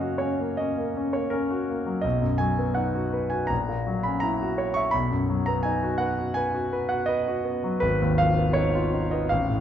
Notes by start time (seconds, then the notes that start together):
Already playing: F#2 C#3 F#3 A#3 C#4 D#5 F5 F#5
0.01 F#4
0.18 C#4 C#5
0.40 A#3
0.57 C#4 D#5
0.78 A#3
0.97 C#4
1.13 A#3 C#5
1.30 C#4 A#4
1.51 F#4
1.69 A#3
1.86 F#3
2.01 B1 D#5
2.22 F#2
2.38 F#3 G#5
2.58 B3
2.75 D#4 F#5
2.95 F#4
3.13 B4
3.30 F#4 G#5
3.47 A#1 A#5
3.68 A#2
3.87 F#3
4.03 C#4 B5
4.20 E4 A#5
4.41 F#4
4.58 C#5
4.74 E5 C#6
4.91 B1 B5
5.11 F#2
5.30 F#3
5.46 B3 A#5
5.63 D#4 G#5
5.83 F#4
5.98 B4 F#5
6.19 F#4
6.34 B4 G#5
6.54 F#4
6.73 B4
6.89 F#4 F#5
7.06 B4 D#5
7.28 F#4
7.44 B3
7.64 F#3
7.80 G#1 B4
8.02 D#2
8.18 F3 F5
8.38 B3
8.53 D#4 C#5
8.75 F4
8.94 D#4
9.11 B3 D#5
9.29 A1 F5
9.50 A2